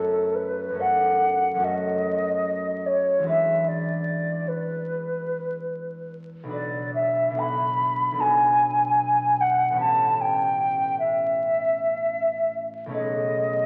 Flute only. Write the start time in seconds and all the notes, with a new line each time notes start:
Already playing: A4
0.35 B4
0.80 F#5
1.64 D#5
2.86 C#5
3.28 E5
3.68 D5
4.48 B4
6.54 D5
6.95 E5
7.39 B5
8.21 G#5
9.41 F#5
9.80 A5
10.21 G5
10.99 E5
12.95 D#5